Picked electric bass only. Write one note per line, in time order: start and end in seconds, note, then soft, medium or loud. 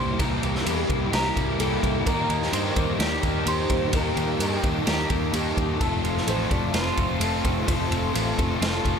0.00 0.13 C2 medium
0.19 0.36 C2 medium
0.43 0.60 C2 medium
0.66 0.83 E2 medium
0.90 1.07 C2 medium
1.12 1.30 C2 medium
1.36 1.53 C2 medium
1.59 1.76 C2 medium
1.83 2.00 C2 medium
2.06 2.23 D#2 medium
2.29 2.47 D#2 medium
2.53 2.70 G2 medium
2.76 2.93 D#2 medium
2.99 3.17 D#2 medium
3.23 3.41 D#2 medium
3.46 3.63 D#2 medium
3.70 3.87 D#2 medium
3.93 4.10 D#2 medium
4.17 4.34 D#2 medium
4.39 4.57 G2 medium
4.63 4.81 D#2 medium
4.87 5.04 D#2 medium
5.10 5.28 D#2 medium
5.33 5.51 D#2 medium
5.57 5.75 D#2 medium
5.81 5.98 F1 medium
6.04 6.21 F1 medium
6.27 6.45 A1 medium
6.51 6.68 F1 medium
6.74 6.91 F1 medium
6.97 7.15 F1 medium
7.20 7.38 F1 medium
7.44 7.62 F1 medium
7.68 7.85 F1 medium
7.91 8.08 F1 medium
8.15 8.32 A1 medium
8.38 8.55 F1 medium
8.61 8.79 F1 medium
8.85 8.99 F1 medium